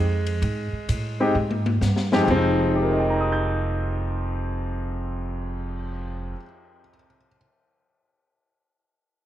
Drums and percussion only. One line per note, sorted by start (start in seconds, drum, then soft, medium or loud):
0.26 ride soft
0.42 kick soft
0.42 ride medium
0.88 kick soft
0.88 hi-hat pedal medium
0.88 ride medium
1.51 high tom medium
1.66 high tom medium
1.82 snare medium
1.82 hi-hat pedal medium
1.96 snare medium
2.12 snare medium
2.28 kick soft
2.28 crash medium
2.58 cymbal swell soft